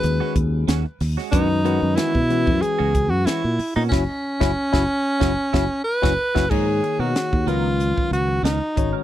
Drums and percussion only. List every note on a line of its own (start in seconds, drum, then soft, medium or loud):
0.03 closed hi-hat medium
0.36 kick medium
0.36 closed hi-hat medium
0.68 snare loud
0.68 closed hi-hat medium
1.01 snare soft
1.01 open hi-hat medium
1.18 snare soft
1.33 kick loud
1.33 closed hi-hat medium
1.66 closed hi-hat medium
1.97 snare loud
1.97 closed hi-hat medium
2.15 kick medium
2.30 closed hi-hat medium
2.47 kick medium
2.63 closed hi-hat medium
2.95 kick medium
2.95 closed hi-hat medium
3.27 snare loud
3.27 closed hi-hat medium
3.59 open hi-hat medium
3.92 kick loud
3.92 snare medium
4.41 kick loud
4.41 snare loud
4.74 kick medium
4.74 snare loud
5.21 kick medium
5.21 snare medium
5.54 kick medium
5.54 snare medium
6.03 kick loud
6.03 snare medium
6.36 kick medium
6.36 snare medium
6.51 kick loud
6.51 crash medium
6.84 closed hi-hat medium
7.16 snare loud
7.16 closed hi-hat medium
7.33 kick medium
7.48 closed hi-hat medium
7.80 closed hi-hat medium
7.98 kick medium
8.13 closed hi-hat medium
8.45 snare loud
8.45 closed hi-hat medium
8.77 kick medium
8.77 closed hi-hat medium